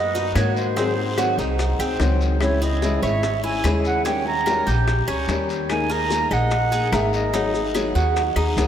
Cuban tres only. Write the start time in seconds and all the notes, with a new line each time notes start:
Already playing: B4
0.15 D#4
0.36 F#4
0.76 C4
1.18 F#4
1.39 D#4
1.80 C4
2.62 G#4
3.03 C#5
3.44 E4
3.64 G#4
4.05 C#4
4.46 A#4
4.67 G4
5.08 C#4
5.90 A#4
6.31 D#5
6.72 G#4
6.93 A#4
7.34 D#4
7.75 G#4
7.95 F#4
8.36 D#4